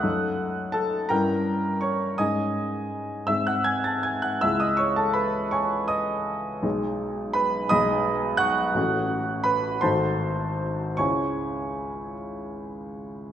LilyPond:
\new Staff \with { instrumentName = "Grand piano" } { \time 6/8 \key cis \minor \tempo 4. = 54 << { <fis'' dis''' fis'''>4 <a' a''>8 <bes' g'' bes''>4 <des'' des'''>8 | <dis'' gis'' dis'''>4. <e'' e'''>16 <fis'' fis'''>16 <gis'' gis'''>16 <a'' a'''>16 <gis'' gis'''>16 <fis'' fis'''>16 | <e'' e'''>16 <dis'' dis'''>16 <cis'' cis'''>16 <a' a''>16 <b' b''>8 <cis'' gis'' cis'''>8 <dis'' dis'''>4 | r4 <b' b''>8 <dis'' b'' dis'''>4 <fis'' cis''' fis'''>8~ |
<fis'' cis''' fis'''>4 <b' b''>8 <bis' a'' bis''>4. | <cis'' gis'' cis'''>4. r4. | } \\ { <fis, a dis' a'>4. <g, des' e'>4. | <gis, cis' dis' gis'>4. <gis, bis dis' gis'>4. | <cis, gis e' gis'>2. | <b,, gis dis' gis'>4. <b,, gis dis' gis'>4. |
<a,, a cis' fis'>4. <gis,, a dis' fis'>4. | <cis, gis cis' e'>2. | } >> }